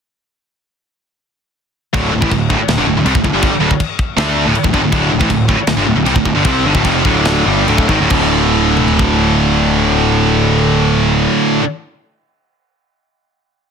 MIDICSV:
0, 0, Header, 1, 6, 480
1, 0, Start_track
1, 0, Tempo, 372671
1, 2496, Time_signature, 4, 2, 24, 8
1, 6820, Tempo, 388350
1, 8740, Tempo, 421348
1, 10180, Tempo, 440205
1, 16279, End_track
2, 0, Start_track
2, 0, Title_t, "Distorted electric guitar"
2, 0, Program_c, 0, 30
2, 2489, Note_on_c, 0, 38, 96
2, 2496, Note_on_c, 0, 45, 109
2, 2505, Note_on_c, 0, 50, 113
2, 2716, Note_off_c, 0, 38, 0
2, 2722, Note_off_c, 0, 45, 0
2, 2732, Note_on_c, 0, 38, 81
2, 2733, Note_off_c, 0, 50, 0
2, 2738, Note_on_c, 0, 45, 78
2, 2837, Note_off_c, 0, 45, 0
2, 2848, Note_off_c, 0, 38, 0
2, 2853, Note_on_c, 0, 45, 87
2, 2865, Note_on_c, 0, 52, 94
2, 2967, Note_off_c, 0, 45, 0
2, 2973, Note_off_c, 0, 52, 0
2, 2977, Note_on_c, 0, 38, 59
2, 2985, Note_on_c, 0, 45, 66
2, 3168, Note_off_c, 0, 38, 0
2, 3172, Note_off_c, 0, 45, 0
2, 3214, Note_on_c, 0, 38, 88
2, 3226, Note_on_c, 0, 45, 103
2, 3328, Note_off_c, 0, 38, 0
2, 3333, Note_off_c, 0, 45, 0
2, 3455, Note_on_c, 0, 38, 62
2, 3457, Note_on_c, 0, 45, 76
2, 3572, Note_off_c, 0, 38, 0
2, 3576, Note_off_c, 0, 45, 0
2, 3577, Note_on_c, 0, 43, 86
2, 3589, Note_on_c, 0, 50, 86
2, 3689, Note_off_c, 0, 43, 0
2, 3695, Note_off_c, 0, 50, 0
2, 3702, Note_on_c, 0, 38, 65
2, 3709, Note_on_c, 0, 45, 70
2, 3809, Note_off_c, 0, 38, 0
2, 3810, Note_off_c, 0, 45, 0
2, 3825, Note_on_c, 0, 38, 68
2, 3825, Note_on_c, 0, 45, 67
2, 3923, Note_off_c, 0, 38, 0
2, 3928, Note_on_c, 0, 48, 92
2, 3931, Note_off_c, 0, 45, 0
2, 3936, Note_on_c, 0, 55, 98
2, 4042, Note_off_c, 0, 48, 0
2, 4047, Note_on_c, 0, 38, 70
2, 4048, Note_off_c, 0, 55, 0
2, 4053, Note_on_c, 0, 45, 74
2, 4152, Note_off_c, 0, 38, 0
2, 4159, Note_off_c, 0, 45, 0
2, 4167, Note_on_c, 0, 38, 65
2, 4174, Note_on_c, 0, 45, 73
2, 4289, Note_off_c, 0, 38, 0
2, 4293, Note_off_c, 0, 45, 0
2, 4295, Note_on_c, 0, 43, 84
2, 4298, Note_on_c, 0, 50, 97
2, 4307, Note_on_c, 0, 55, 102
2, 4521, Note_off_c, 0, 43, 0
2, 4530, Note_off_c, 0, 50, 0
2, 4534, Note_off_c, 0, 55, 0
2, 4644, Note_on_c, 0, 38, 103
2, 4657, Note_on_c, 0, 45, 108
2, 4763, Note_off_c, 0, 38, 0
2, 4769, Note_off_c, 0, 45, 0
2, 5375, Note_on_c, 0, 50, 97
2, 5381, Note_on_c, 0, 57, 102
2, 5388, Note_on_c, 0, 62, 103
2, 5730, Note_off_c, 0, 50, 0
2, 5733, Note_off_c, 0, 57, 0
2, 5736, Note_off_c, 0, 62, 0
2, 5742, Note_on_c, 0, 38, 87
2, 5747, Note_on_c, 0, 45, 88
2, 5850, Note_off_c, 0, 38, 0
2, 5856, Note_off_c, 0, 45, 0
2, 5980, Note_on_c, 0, 45, 87
2, 5982, Note_on_c, 0, 38, 70
2, 6093, Note_off_c, 0, 38, 0
2, 6098, Note_on_c, 0, 43, 98
2, 6100, Note_off_c, 0, 45, 0
2, 6106, Note_on_c, 0, 50, 115
2, 6212, Note_off_c, 0, 43, 0
2, 6216, Note_off_c, 0, 50, 0
2, 6224, Note_on_c, 0, 38, 69
2, 6230, Note_on_c, 0, 45, 72
2, 6322, Note_off_c, 0, 38, 0
2, 6330, Note_off_c, 0, 45, 0
2, 6338, Note_on_c, 0, 38, 101
2, 6345, Note_on_c, 0, 45, 94
2, 6356, Note_on_c, 0, 50, 109
2, 6573, Note_off_c, 0, 38, 0
2, 6576, Note_off_c, 0, 45, 0
2, 6582, Note_off_c, 0, 50, 0
2, 6587, Note_on_c, 0, 38, 82
2, 6591, Note_on_c, 0, 45, 81
2, 6703, Note_off_c, 0, 45, 0
2, 6705, Note_off_c, 0, 38, 0
2, 6719, Note_on_c, 0, 45, 97
2, 6724, Note_on_c, 0, 52, 97
2, 6824, Note_off_c, 0, 45, 0
2, 6827, Note_off_c, 0, 52, 0
2, 6831, Note_on_c, 0, 38, 57
2, 6838, Note_on_c, 0, 45, 69
2, 7014, Note_off_c, 0, 38, 0
2, 7017, Note_off_c, 0, 45, 0
2, 7058, Note_on_c, 0, 38, 87
2, 7066, Note_on_c, 0, 45, 92
2, 7156, Note_off_c, 0, 38, 0
2, 7171, Note_off_c, 0, 45, 0
2, 7295, Note_on_c, 0, 38, 66
2, 7297, Note_on_c, 0, 45, 81
2, 7411, Note_off_c, 0, 38, 0
2, 7412, Note_off_c, 0, 45, 0
2, 7420, Note_on_c, 0, 43, 91
2, 7425, Note_on_c, 0, 50, 89
2, 7526, Note_off_c, 0, 43, 0
2, 7528, Note_off_c, 0, 50, 0
2, 7539, Note_on_c, 0, 38, 64
2, 7544, Note_on_c, 0, 45, 79
2, 7633, Note_off_c, 0, 38, 0
2, 7639, Note_off_c, 0, 45, 0
2, 7648, Note_on_c, 0, 38, 69
2, 7654, Note_on_c, 0, 45, 79
2, 7760, Note_off_c, 0, 38, 0
2, 7765, Note_on_c, 0, 48, 94
2, 7769, Note_off_c, 0, 45, 0
2, 7778, Note_on_c, 0, 55, 100
2, 7878, Note_off_c, 0, 48, 0
2, 7885, Note_off_c, 0, 55, 0
2, 7888, Note_on_c, 0, 38, 63
2, 7895, Note_on_c, 0, 45, 69
2, 7994, Note_off_c, 0, 38, 0
2, 7995, Note_off_c, 0, 45, 0
2, 8009, Note_on_c, 0, 38, 73
2, 8009, Note_on_c, 0, 45, 78
2, 8123, Note_off_c, 0, 38, 0
2, 8128, Note_off_c, 0, 45, 0
2, 8128, Note_on_c, 0, 43, 89
2, 8135, Note_on_c, 0, 50, 94
2, 8242, Note_off_c, 0, 43, 0
2, 8245, Note_off_c, 0, 50, 0
2, 8249, Note_on_c, 0, 48, 111
2, 8261, Note_on_c, 0, 55, 114
2, 8264, Note_on_c, 0, 60, 112
2, 8486, Note_off_c, 0, 48, 0
2, 8493, Note_off_c, 0, 55, 0
2, 8494, Note_off_c, 0, 60, 0
2, 8494, Note_on_c, 0, 43, 97
2, 8502, Note_on_c, 0, 50, 119
2, 8610, Note_off_c, 0, 43, 0
2, 8614, Note_off_c, 0, 50, 0
2, 8625, Note_on_c, 0, 38, 87
2, 8634, Note_on_c, 0, 45, 107
2, 8738, Note_off_c, 0, 38, 0
2, 8742, Note_off_c, 0, 45, 0
2, 8743, Note_on_c, 0, 41, 90
2, 8749, Note_on_c, 0, 48, 75
2, 8753, Note_on_c, 0, 53, 100
2, 8967, Note_off_c, 0, 41, 0
2, 8970, Note_off_c, 0, 48, 0
2, 8972, Note_off_c, 0, 53, 0
2, 8973, Note_on_c, 0, 38, 80
2, 8979, Note_on_c, 0, 45, 99
2, 8983, Note_on_c, 0, 50, 95
2, 9432, Note_off_c, 0, 50, 0
2, 9438, Note_off_c, 0, 38, 0
2, 9441, Note_off_c, 0, 45, 0
2, 9443, Note_on_c, 0, 43, 78
2, 9445, Note_on_c, 0, 50, 95
2, 9455, Note_on_c, 0, 55, 89
2, 9675, Note_off_c, 0, 50, 0
2, 9676, Note_off_c, 0, 43, 0
2, 9680, Note_on_c, 0, 38, 94
2, 9684, Note_off_c, 0, 55, 0
2, 9686, Note_on_c, 0, 45, 95
2, 9689, Note_on_c, 0, 50, 97
2, 9921, Note_off_c, 0, 38, 0
2, 9924, Note_off_c, 0, 45, 0
2, 9926, Note_off_c, 0, 50, 0
2, 9929, Note_on_c, 0, 44, 84
2, 9940, Note_on_c, 0, 51, 97
2, 10047, Note_off_c, 0, 44, 0
2, 10053, Note_off_c, 0, 51, 0
2, 10057, Note_on_c, 0, 38, 91
2, 10067, Note_on_c, 0, 45, 99
2, 10157, Note_off_c, 0, 38, 0
2, 10171, Note_on_c, 0, 38, 105
2, 10179, Note_off_c, 0, 45, 0
2, 10192, Note_on_c, 0, 45, 120
2, 10209, Note_on_c, 0, 50, 113
2, 13988, Note_off_c, 0, 38, 0
2, 14009, Note_off_c, 0, 45, 0
2, 14026, Note_off_c, 0, 50, 0
2, 16279, End_track
3, 0, Start_track
3, 0, Title_t, "Picked electric bass"
3, 0, Program_c, 1, 34
3, 2505, Note_on_c, 1, 26, 85
3, 2724, Note_off_c, 1, 26, 0
3, 2733, Note_on_c, 1, 26, 72
3, 2846, Note_off_c, 1, 26, 0
3, 2861, Note_on_c, 1, 33, 104
3, 2970, Note_off_c, 1, 33, 0
3, 2981, Note_on_c, 1, 26, 74
3, 3201, Note_off_c, 1, 26, 0
3, 3222, Note_on_c, 1, 26, 79
3, 3330, Note_off_c, 1, 26, 0
3, 3450, Note_on_c, 1, 26, 87
3, 3564, Note_off_c, 1, 26, 0
3, 3578, Note_on_c, 1, 31, 91
3, 3685, Note_off_c, 1, 31, 0
3, 3693, Note_on_c, 1, 26, 93
3, 3806, Note_off_c, 1, 26, 0
3, 3814, Note_on_c, 1, 26, 89
3, 3926, Note_off_c, 1, 26, 0
3, 3934, Note_on_c, 1, 36, 107
3, 4046, Note_off_c, 1, 36, 0
3, 4057, Note_on_c, 1, 26, 79
3, 4168, Note_off_c, 1, 26, 0
3, 4174, Note_on_c, 1, 26, 82
3, 4278, Note_off_c, 1, 26, 0
3, 4285, Note_on_c, 1, 31, 101
3, 4513, Note_off_c, 1, 31, 0
3, 4642, Note_on_c, 1, 26, 79
3, 4760, Note_off_c, 1, 26, 0
3, 5368, Note_on_c, 1, 38, 105
3, 5708, Note_off_c, 1, 38, 0
3, 5743, Note_on_c, 1, 26, 90
3, 5852, Note_off_c, 1, 26, 0
3, 5986, Note_on_c, 1, 26, 85
3, 6095, Note_off_c, 1, 26, 0
3, 6102, Note_on_c, 1, 31, 97
3, 6209, Note_off_c, 1, 31, 0
3, 6217, Note_on_c, 1, 26, 95
3, 6330, Note_off_c, 1, 26, 0
3, 6348, Note_on_c, 1, 26, 99
3, 6569, Note_off_c, 1, 26, 0
3, 6591, Note_on_c, 1, 26, 80
3, 6695, Note_off_c, 1, 26, 0
3, 6702, Note_on_c, 1, 33, 111
3, 6815, Note_off_c, 1, 33, 0
3, 6830, Note_on_c, 1, 26, 83
3, 7044, Note_off_c, 1, 26, 0
3, 7053, Note_on_c, 1, 26, 98
3, 7163, Note_off_c, 1, 26, 0
3, 7297, Note_on_c, 1, 26, 87
3, 7397, Note_off_c, 1, 26, 0
3, 7405, Note_on_c, 1, 31, 99
3, 7517, Note_off_c, 1, 31, 0
3, 7530, Note_on_c, 1, 26, 95
3, 7631, Note_off_c, 1, 26, 0
3, 7639, Note_on_c, 1, 26, 84
3, 7753, Note_off_c, 1, 26, 0
3, 7765, Note_on_c, 1, 36, 104
3, 7877, Note_off_c, 1, 36, 0
3, 7884, Note_on_c, 1, 26, 79
3, 7996, Note_off_c, 1, 26, 0
3, 8008, Note_on_c, 1, 26, 75
3, 8119, Note_off_c, 1, 26, 0
3, 8127, Note_on_c, 1, 31, 91
3, 8240, Note_off_c, 1, 31, 0
3, 8245, Note_on_c, 1, 36, 99
3, 8475, Note_off_c, 1, 36, 0
3, 8494, Note_on_c, 1, 31, 93
3, 8609, Note_off_c, 1, 31, 0
3, 8620, Note_on_c, 1, 26, 109
3, 8734, Note_off_c, 1, 26, 0
3, 8742, Note_on_c, 1, 29, 86
3, 8957, Note_off_c, 1, 29, 0
3, 8969, Note_on_c, 1, 26, 81
3, 9410, Note_off_c, 1, 26, 0
3, 9437, Note_on_c, 1, 31, 104
3, 9665, Note_off_c, 1, 31, 0
3, 9684, Note_on_c, 1, 26, 104
3, 9914, Note_off_c, 1, 26, 0
3, 9928, Note_on_c, 1, 32, 84
3, 10046, Note_off_c, 1, 32, 0
3, 10052, Note_on_c, 1, 26, 98
3, 10166, Note_off_c, 1, 26, 0
3, 10173, Note_on_c, 1, 26, 90
3, 13612, Note_off_c, 1, 26, 0
3, 16279, End_track
4, 0, Start_track
4, 0, Title_t, "Muted distorted electric guitar strokes"
4, 3352, Note_on_c, 9, 29, 60
4, 3480, Note_off_c, 9, 29, 0
4, 4526, Note_on_c, 9, 29, 58
4, 4655, Note_off_c, 9, 29, 0
4, 5865, Note_on_c, 9, 29, 63
4, 5994, Note_off_c, 9, 29, 0
4, 7171, Note_on_c, 9, 29, 64
4, 7295, Note_off_c, 9, 29, 0
4, 16279, End_track
5, 0, Start_track
5, 0, Title_t, "Muted picked electric bass strokes"
5, 3337, Note_on_c, 9, 29, 36
5, 3466, Note_off_c, 9, 29, 0
5, 4520, Note_on_c, 9, 29, 45
5, 4648, Note_off_c, 9, 29, 0
5, 5869, Note_on_c, 9, 29, 45
5, 5998, Note_off_c, 9, 29, 0
5, 7184, Note_on_c, 9, 29, 38
5, 7308, Note_off_c, 9, 29, 0
5, 16279, End_track
6, 0, Start_track
6, 0, Title_t, "Drums"
6, 2500, Note_on_c, 9, 52, 61
6, 2502, Note_on_c, 9, 36, 102
6, 2629, Note_off_c, 9, 52, 0
6, 2631, Note_off_c, 9, 36, 0
6, 2860, Note_on_c, 9, 36, 86
6, 2979, Note_on_c, 9, 52, 66
6, 2981, Note_off_c, 9, 36, 0
6, 2981, Note_on_c, 9, 36, 98
6, 3107, Note_off_c, 9, 52, 0
6, 3110, Note_off_c, 9, 36, 0
6, 3221, Note_on_c, 9, 36, 88
6, 3349, Note_off_c, 9, 36, 0
6, 3455, Note_on_c, 9, 52, 60
6, 3461, Note_on_c, 9, 38, 109
6, 3584, Note_off_c, 9, 52, 0
6, 3590, Note_off_c, 9, 38, 0
6, 3937, Note_on_c, 9, 52, 58
6, 4058, Note_on_c, 9, 36, 106
6, 4066, Note_off_c, 9, 52, 0
6, 4178, Note_off_c, 9, 36, 0
6, 4178, Note_on_c, 9, 36, 88
6, 4307, Note_off_c, 9, 36, 0
6, 4412, Note_on_c, 9, 52, 64
6, 4416, Note_on_c, 9, 36, 120
6, 4540, Note_off_c, 9, 52, 0
6, 4545, Note_off_c, 9, 36, 0
6, 4776, Note_on_c, 9, 36, 77
6, 4896, Note_off_c, 9, 36, 0
6, 4896, Note_on_c, 9, 36, 99
6, 4898, Note_on_c, 9, 52, 64
6, 5024, Note_off_c, 9, 36, 0
6, 5027, Note_off_c, 9, 52, 0
6, 5139, Note_on_c, 9, 36, 93
6, 5268, Note_off_c, 9, 36, 0
6, 5383, Note_on_c, 9, 52, 57
6, 5389, Note_on_c, 9, 38, 109
6, 5511, Note_off_c, 9, 52, 0
6, 5518, Note_off_c, 9, 38, 0
6, 5862, Note_on_c, 9, 52, 54
6, 5981, Note_on_c, 9, 36, 107
6, 5991, Note_off_c, 9, 52, 0
6, 6103, Note_off_c, 9, 36, 0
6, 6103, Note_on_c, 9, 36, 88
6, 6232, Note_off_c, 9, 36, 0
6, 6340, Note_on_c, 9, 52, 62
6, 6343, Note_on_c, 9, 36, 122
6, 6468, Note_off_c, 9, 52, 0
6, 6472, Note_off_c, 9, 36, 0
6, 6707, Note_on_c, 9, 36, 82
6, 6827, Note_off_c, 9, 36, 0
6, 6827, Note_on_c, 9, 36, 90
6, 6827, Note_on_c, 9, 52, 68
6, 6950, Note_off_c, 9, 36, 0
6, 6951, Note_off_c, 9, 52, 0
6, 7058, Note_on_c, 9, 36, 81
6, 7181, Note_off_c, 9, 36, 0
6, 7283, Note_on_c, 9, 52, 70
6, 7289, Note_on_c, 9, 38, 114
6, 7407, Note_off_c, 9, 52, 0
6, 7413, Note_off_c, 9, 38, 0
6, 7767, Note_on_c, 9, 52, 64
6, 7886, Note_on_c, 9, 36, 93
6, 7891, Note_off_c, 9, 52, 0
6, 8006, Note_off_c, 9, 36, 0
6, 8006, Note_on_c, 9, 36, 98
6, 8130, Note_off_c, 9, 36, 0
6, 8241, Note_on_c, 9, 52, 69
6, 8247, Note_on_c, 9, 36, 112
6, 8365, Note_off_c, 9, 52, 0
6, 8371, Note_off_c, 9, 36, 0
6, 8615, Note_on_c, 9, 36, 98
6, 8736, Note_on_c, 9, 52, 67
6, 8739, Note_off_c, 9, 36, 0
6, 8739, Note_on_c, 9, 36, 95
6, 8851, Note_off_c, 9, 52, 0
6, 8853, Note_off_c, 9, 36, 0
6, 8969, Note_on_c, 9, 36, 88
6, 9083, Note_off_c, 9, 36, 0
6, 9200, Note_on_c, 9, 52, 68
6, 9205, Note_on_c, 9, 38, 112
6, 9313, Note_off_c, 9, 52, 0
6, 9319, Note_off_c, 9, 38, 0
6, 9684, Note_on_c, 9, 52, 55
6, 9798, Note_off_c, 9, 52, 0
6, 9805, Note_on_c, 9, 36, 99
6, 9919, Note_off_c, 9, 36, 0
6, 9926, Note_on_c, 9, 36, 95
6, 10040, Note_off_c, 9, 36, 0
6, 10167, Note_on_c, 9, 49, 86
6, 10174, Note_on_c, 9, 36, 106
6, 10277, Note_off_c, 9, 49, 0
6, 10284, Note_off_c, 9, 36, 0
6, 10897, Note_on_c, 9, 47, 63
6, 11006, Note_off_c, 9, 47, 0
6, 11019, Note_on_c, 9, 43, 71
6, 11128, Note_off_c, 9, 43, 0
6, 11141, Note_on_c, 9, 36, 93
6, 11250, Note_off_c, 9, 36, 0
6, 16279, End_track
0, 0, End_of_file